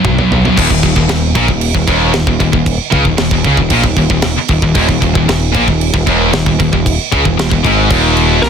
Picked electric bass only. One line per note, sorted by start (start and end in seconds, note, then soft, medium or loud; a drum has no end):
0.05 0.21 B1 medium
0.30 0.47 B1 medium
0.57 0.69 D#1 medium
0.70 0.82 D#1 medium
0.83 0.96 D#1 medium
0.96 1.08 D#1 medium
1.10 1.34 D#1 medium
1.35 1.48 A#1 medium
1.49 1.73 D#1 medium
1.75 1.87 D#1 medium
1.87 2.12 D#1 loud
2.14 2.26 D#1 medium
2.27 2.39 D#1 medium
2.40 2.52 D#1 medium
2.53 2.78 D#1 medium
2.93 3.05 C#2 loud
3.05 3.18 D#1 medium
3.19 3.31 D#1 medium
3.31 3.44 D#1 medium
3.45 3.56 C#2 medium
3.57 3.70 D#1 medium
3.71 3.83 A#1 loud
3.84 3.96 D#1 medium
3.97 4.09 D#1 medium
4.10 4.22 D#1 medium
4.24 4.36 D#1 medium
4.38 muted picked electric bass stroke soft
4.49 4.62 D#1 medium
4.62 4.75 D#1 medium
4.76 4.88 D#1 loud
4.89 5.01 D#1 medium
5.02 5.14 D#1 medium
5.16 5.28 D#1 medium
5.28 5.53 D#1 medium
5.55 5.67 A#1 medium
5.68 5.92 D#1 medium
5.94 6.06 D#1 medium
6.07 6.31 D#1 loud
6.33 6.45 D#1 medium
6.46 6.58 D#1 medium
6.60 6.72 D#1 medium
6.73 6.97 D#1 medium
7.12 7.24 C#2 medium
7.26 7.37 D#1 medium
7.39 7.51 D#1 medium
7.51 7.63 D#1 medium
7.64 7.88 G#1 medium
7.91 8.39 D#1 loud
8.43 8.49 B1 loud